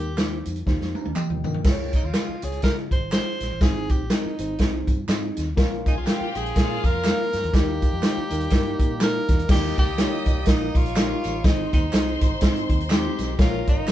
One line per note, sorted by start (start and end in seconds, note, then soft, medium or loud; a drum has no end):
0.00 0.43 D#2 loud
0.00 0.43 D#3 medium
0.00 0.63 G4 loud
0.00 0.11 A#4 medium
0.18 0.57 A#3 medium
0.18 0.57 D#4 medium
0.18 0.57 G4 medium
0.18 0.57 C5 medium
0.18 snare loud
0.18 clap medium
0.18 closed hi-hat medium
0.18 tambourine medium
0.45 0.62 F2 medium
0.45 closed hi-hat medium
0.45 tambourine soft
0.56 closed hi-hat medium
0.66 0.78 D#2 medium
0.66 1.06 A#3 medium
0.66 1.06 D#4 medium
0.66 1.06 G4 medium
0.66 1.06 C5 medium
0.66 kick medium
0.66 snare medium
0.81 0.92 F2 medium
0.81 snare soft
0.95 1.15 A#5 medium
0.95 high tom medium
0.95 tambourine soft
1.05 1.14 D#2 medium
1.05 high tom medium
1.16 1.44 G4 medium
1.16 1.44 D#5 medium
1.16 1.43 G5 medium
1.16 clap loud
1.16 mid tom medium
1.16 tambourine loud
1.30 1.41 D#2 medium
1.30 mid tom medium
1.44 1.60 D#3 medium
1.44 1.92 A#4 medium
1.44 1.64 D#5 medium
1.44 1.91 G5 medium
1.44 floor tom medium
1.44 tambourine medium
1.54 floor tom medium
1.64 1.94 C#2 loud
1.64 2.39 C#3 medium
1.64 2.04 C#4 loud
1.64 2.04 F4 loud
1.64 2.04 G#4 medium
1.64 1.72 C5 medium
1.64 kick loud
1.64 snare loud
1.64 crash loud
1.64 tambourine soft
1.72 2.07 C#5 loud
1.93 2.07 D#4 medium
1.93 kick medium
1.93 closed hi-hat medium
1.93 tambourine soft
2.04 2.11 D#2 medium
2.04 2.46 F4 medium
2.14 2.36 C#4 medium
2.14 2.36 F4 medium
2.14 2.36 G#4 medium
2.14 2.36 D#5 medium
2.14 snare loud
2.14 clap medium
2.14 closed hi-hat medium
2.14 tambourine medium
2.28 muted fingered electric bass stroke soft
2.42 2.58 C#2 medium
2.42 2.58 C#4 medium
2.42 2.59 F4 medium
2.42 2.63 G#4 medium
2.42 2.59 G#4 medium
2.42 2.59 C#5 medium
2.42 closed hi-hat medium
2.42 tambourine soft
2.52 closed hi-hat soft
2.62 2.93 C#3 loud
2.62 3.02 C#4 medium
2.62 2.70 E4 medium
2.62 3.03 G#4 medium
2.62 2.76 A#4 loud
2.62 3.03 D#5 medium
2.62 kick medium
2.62 snare loud
2.62 closed hi-hat medium
2.70 3.05 F4 medium
2.91 3.18 G#1 medium
2.91 3.11 C5 loud
2.91 kick medium
2.91 closed hi-hat medium
2.91 tambourine soft
3.12 3.52 C#4 medium
3.12 3.51 F4 medium
3.12 3.52 G#4 medium
3.12 3.63 C5 loud
3.12 3.52 C5 medium
3.12 snare loud
3.12 clap loud
3.12 closed hi-hat medium
3.12 tambourine medium
3.40 3.49 A#1 medium
3.40 snare soft
3.40 closed hi-hat medium
3.40 tambourine medium
3.51 3.59 A1 medium
3.61 3.90 G#1 loud
3.61 4.36 G#2 medium
3.61 4.01 C4 medium
3.61 4.01 D#4 medium
3.61 3.93 G#4 loud
3.61 4.01 G#4 medium
3.61 4.01 C5 medium
3.61 kick loud
3.61 snare loud
3.61 closed hi-hat medium
3.61 tambourine medium
3.89 4.12 G4 medium
3.89 kick medium
3.89 closed hi-hat medium
3.89 tambourine medium
4.01 4.08 A#1 medium
4.10 4.32 C4 medium
4.10 4.32 D#4 medium
4.10 4.89 D#4 medium
4.10 4.32 G#4 medium
4.10 4.33 A#4 medium
4.10 snare loud
4.10 clap medium
4.10 closed hi-hat medium
4.10 tambourine medium
4.25 muted fingered electric bass stroke soft
4.39 4.54 G#1 medium
4.39 4.54 C4 medium
4.39 4.55 D#4 medium
4.39 4.55 G#4 medium
4.39 4.55 C5 medium
4.39 closed hi-hat medium
4.39 tambourine medium
4.58 4.81 C2 loud
4.58 4.98 C4 medium
4.58 4.98 D#4 medium
4.58 4.99 G#4 medium
4.58 4.99 C5 medium
4.58 kick medium
4.58 snare loud
4.58 closed hi-hat medium
4.58 tambourine soft
4.87 5.03 G2 medium
4.87 kick medium
4.87 closed hi-hat medium
4.87 tambourine soft
5.07 5.30 G#2 loud
5.07 5.47 C4 medium
5.07 5.47 D#4 medium
5.07 5.47 G#4 medium
5.07 5.48 D#5 loud
5.07 snare loud
5.07 clap loud
5.07 closed hi-hat medium
5.07 tambourine loud
5.37 5.58 D#2 medium
5.37 snare soft
5.37 closed hi-hat medium
5.37 tambourine medium
5.57 5.87 A#1 loud
5.57 6.31 A#2 medium
5.57 7.52 F3 medium
5.57 5.96 A#3 loud
5.57 9.46 A#3 medium
5.57 5.96 C#4 loud
5.57 7.52 C#4 medium
5.57 5.96 F4 loud
5.57 7.52 F4 medium
5.57 5.96 A#4 loud
5.57 kick loud
5.57 snare loud
5.57 closed hi-hat medium
5.57 tambourine medium
5.86 5.97 D#4 medium
5.86 6.03 G#4 medium
5.86 6.03 G#5 medium
5.86 kick medium
5.86 closed hi-hat medium
5.86 tambourine soft
5.97 6.04 C2 medium
5.97 6.38 F4 medium
6.06 6.28 A#3 medium
6.06 6.28 C#4 medium
6.06 6.28 F4 medium
6.06 6.53 G4 loud
6.06 6.28 A#4 medium
6.06 6.53 G5 loud
6.06 snare loud
6.06 clap medium
6.06 closed hi-hat medium
6.06 tambourine medium
6.21 muted fingered electric bass stroke soft
6.35 6.51 A#1 medium
6.35 6.51 A#3 medium
6.35 6.51 C#4 medium
6.35 6.51 F4 medium
6.35 6.51 G#4 medium
6.35 6.87 G#4 loud
6.35 closed hi-hat medium
6.35 tambourine medium
6.46 closed hi-hat soft
6.55 6.78 A#2 loud
6.55 6.94 A#3 medium
6.55 6.94 C#4 medium
6.55 7.30 F4 loud
6.55 6.95 F4 medium
6.55 6.95 A#4 medium
6.55 7.30 F5 loud
6.55 kick medium
6.55 snare loud
6.55 closed hi-hat medium
6.55 tambourine soft
6.84 7.10 F2 medium
6.84 7.56 A#4 loud
6.84 kick medium
6.84 closed hi-hat medium
6.84 tambourine soft
7.04 7.43 A#3 medium
7.04 7.43 C#4 medium
7.04 7.43 F4 medium
7.04 7.43 A#4 medium
7.04 snare loud
7.04 clap loud
7.04 closed hi-hat medium
7.04 tambourine loud
7.33 7.41 G2 medium
7.33 snare soft
7.33 closed hi-hat medium
7.33 tambourine medium
7.44 7.51 E2 medium
7.44 closed hi-hat soft
7.53 7.83 D#2 loud
7.53 8.27 D#3 medium
7.53 9.48 G3 medium
7.53 7.92 A#3 loud
7.53 7.92 D#4 medium
7.53 9.47 D#4 medium
7.53 7.93 G4 medium
7.53 9.48 G4 medium
7.53 9.01 G4 loud
7.53 7.93 A#4 medium
7.53 kick loud
7.53 snare loud
7.53 closed hi-hat medium
7.53 tambourine medium
7.82 kick medium
7.82 closed hi-hat medium
7.82 tambourine soft
7.93 8.00 F2 medium
8.02 8.24 A#3 medium
8.02 8.24 D#4 medium
8.02 8.24 G4 medium
8.02 8.24 C5 medium
8.02 snare loud
8.02 clap medium
8.02 closed hi-hat medium
8.02 tambourine medium
8.17 muted fingered electric bass stroke soft
8.30 8.46 D#2 loud
8.30 8.46 A#3 medium
8.30 8.46 D#4 medium
8.30 8.46 G4 medium
8.30 8.46 A#4 medium
8.30 closed hi-hat medium
8.30 tambourine medium
8.40 closed hi-hat soft
8.50 8.90 A#3 medium
8.50 8.90 D#4 medium
8.50 8.90 G4 medium
8.50 8.59 G#4 medium
8.50 kick loud
8.50 snare loud
8.50 closed hi-hat loud
8.50 tambourine soft
8.58 8.93 A#4 loud
8.79 9.17 A#2 medium
8.79 kick medium
8.79 closed hi-hat medium
8.79 tambourine soft
8.99 9.39 A#3 medium
8.99 9.39 D#4 medium
8.99 9.39 G4 medium
8.99 9.07 A4 medium
8.99 9.47 A#4 loud
8.99 snare loud
8.99 clap loud
8.99 closed hi-hat medium
8.99 tambourine loud
9.06 9.42 A#4 loud
9.28 9.44 E2 medium
9.28 kick loud
9.28 snare soft
9.28 closed hi-hat medium
9.28 tambourine medium
9.39 closed hi-hat soft
9.49 9.71 D#2 loud
9.49 10.23 D#3 medium
9.49 11.43 G3 medium
9.49 9.88 A#3 medium
9.49 11.43 A#3 medium
9.49 9.88 D#4 medium
9.49 13.36 D#4 medium
9.49 9.88 G4 medium
9.49 11.43 G4 medium
9.49 9.77 G4 loud
9.49 9.88 A#4 medium
9.49 9.56 D5 medium
9.49 10.73 D#5 medium
9.49 10.73 D#6 loud
9.49 kick loud
9.49 snare loud
9.49 crash loud
9.49 tambourine medium
9.55 9.91 D#5 medium
9.78 10.04 C#2 medium
9.78 10.49 G4 loud
9.78 kick medium
9.78 closed hi-hat medium
9.78 tambourine medium
9.98 10.37 A#3 medium
9.98 10.37 D#4 medium
9.98 10.37 G4 medium
9.98 10.37 A#4 medium
9.98 10.37 C#5 medium
9.98 snare loud
9.98 clap medium
9.98 closed hi-hat loud
9.98 tambourine medium
10.26 10.34 C#2 loud
10.26 kick medium
10.26 closed hi-hat medium
10.26 tambourine medium
10.37 10.45 C2 medium
10.46 10.69 A#1 loud
10.46 10.85 A#3 medium
10.46 10.85 D#4 medium
10.46 10.78 D#4 medium
10.46 10.85 G4 medium
10.46 10.86 A#4 medium
10.46 10.86 D#5 medium
10.46 kick medium
10.46 snare loud
10.46 closed hi-hat loud
10.75 11.12 A#1 medium
10.75 11.46 F4 loud
10.75 11.43 C#5 medium
10.75 11.43 C#6 medium
10.75 kick medium
10.75 closed hi-hat medium
10.75 tambourine soft
10.86 closed hi-hat medium
10.95 11.34 A#3 medium
10.95 11.34 D#4 medium
10.95 11.03 F#4 medium
10.95 11.35 A#4 medium
10.95 11.35 D#5 medium
10.95 snare loud
10.95 clap loud
10.95 closed hi-hat medium
10.95 tambourine loud
11.02 11.37 G4 medium
11.24 11.40 A1 medium
11.24 closed hi-hat medium
11.24 tambourine medium
11.44 11.66 G#1 loud
11.44 12.18 G#2 medium
11.44 13.37 D#3 medium
11.44 13.37 G#3 medium
11.44 11.83 C4 medium
11.44 13.37 C4 medium
11.44 11.83 D#4 medium
11.44 11.73 D#4 loud
11.44 11.83 G#4 medium
11.44 13.35 C5 medium
11.44 11.83 C5 medium
11.44 11.83 D#5 medium
11.44 13.35 C6 loud
11.44 kick loud
11.44 snare loud
11.44 closed hi-hat medium
11.44 tambourine medium
11.73 11.88 D#2 medium
11.73 12.67 D#4 medium
11.73 kick medium
11.73 closed hi-hat medium
11.73 tambourine medium
11.93 12.15 C2 loud
11.93 12.32 C4 medium
11.93 12.32 D#4 medium
11.93 12.32 G#4 medium
11.93 12.32 C5 medium
11.93 12.32 D#5 medium
11.93 snare loud
11.93 clap medium
11.93 closed hi-hat loud
11.93 tambourine medium
12.21 12.36 G#1 loud
12.21 kick medium
12.21 closed hi-hat medium
12.21 tambourine medium
12.41 12.63 G#2 loud
12.41 12.80 C4 loud
12.41 12.80 D#4 medium
12.41 12.80 G#4 medium
12.41 12.81 C5 medium
12.41 12.80 D#5 loud
12.41 kick medium
12.41 snare loud
12.41 closed hi-hat medium
12.41 tambourine soft
12.56 closed hi-hat medium
12.70 13.07 D#2 medium
12.70 kick medium
12.70 closed hi-hat medium
12.80 closed hi-hat medium
12.90 13.29 G#3 medium
12.90 13.29 C4 medium
12.90 13.29 D#4 medium
12.90 13.37 G4 medium
12.90 13.29 C5 medium
12.90 13.29 D#5 medium
12.90 snare loud
12.90 clap loud
12.90 closed hi-hat medium
12.90 tambourine loud
13.19 13.34 B1 medium
13.19 snare soft
13.19 closed hi-hat medium
13.19 tambourine medium
13.38 13.61 A#1 loud
13.38 13.92 A#2 medium
13.38 13.92 F3 medium
13.38 13.77 A#3 medium
13.38 13.92 A#3 medium
13.38 13.77 C#4 medium
13.38 13.92 C#4 medium
13.38 13.78 F4 medium
13.38 13.92 F4 medium
13.38 13.67 F4 loud
13.38 13.92 A#4 medium
13.38 13.78 A#4 medium
13.38 13.78 C#5 medium
13.38 13.92 A#5 medium
13.38 kick loud
13.38 snare loud
13.38 closed hi-hat medium
13.38 tambourine medium
13.67 13.92 G#1 medium
13.67 13.92 D#4 loud
13.67 kick medium
13.67 closed hi-hat medium
13.67 tambourine medium
13.87 13.92 A#3 medium
13.87 13.92 C#4 medium
13.87 13.92 F4 medium
13.87 13.92 A#4 medium
13.87 13.92 B4 medium
13.87 snare loud
13.87 clap medium
13.87 closed hi-hat medium
13.87 tambourine medium